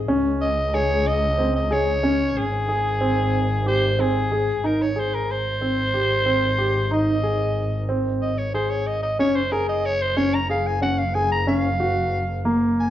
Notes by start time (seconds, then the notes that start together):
Already playing: G#1
0.08 C#2 C#4
0.41 D#5
0.74 G#4 C#5
1.07 D#5
1.38 C4
1.56 D#5
1.71 G#4 C#5
2.03 C#4
2.36 G#1 G#4
2.69 G#4
3.01 C4
3.66 G4 C5
3.99 C4 G#4
4.32 G#4
4.64 G#1 D#4 A#4
4.82 C#5
4.96 G#4 C5
5.15 A#4
5.31 C5
5.61 C4
5.94 G4
6.26 C4
6.58 G4
6.91 D#4 D#5
7.23 G#4
7.89 C4
8.22 D#5
8.38 C#5
8.54 G#4 C5
8.70 C#5
8.87 D#5
9.03 D#5
9.19 F#1 C#4 C#5
9.35 C5
9.52 G#4 A#4
9.69 D#5
9.85 C#5
10.02 C5
10.17 C#4 C#5
10.34 A#5
10.50 G#4 F5
10.67 G#5
10.82 C#4 F#5
10.99 F5
11.15 G#4 G#5
11.32 A#5
11.47 C#4 F5
11.80 F#4
12.45 A#3
12.80 G#5